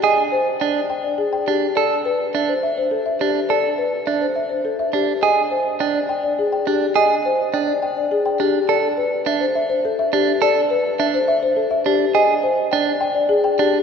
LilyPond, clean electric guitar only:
\new Staff \with { instrumentName = "Clean electric guitar" } { \time 3/4 \key c \major \tempo 4 = 104 aes'16 r8. d'16 r4 r16 d'16 r16 | a'16 r8. d'16 r4 r16 d'16 r16 | a'16 r8. d'16 r4 r16 d'16 r16 | aes'16 r8. d'16 r4 r16 d'16 r16 |
aes'16 r8. d'16 r4 r16 d'16 r16 | a'16 r8. d'16 r4 r16 d'16 r16 | a'16 r8. d'16 r4 r16 d'16 r16 | aes'16 r8. d'16 r4 r16 d'16 r16 | }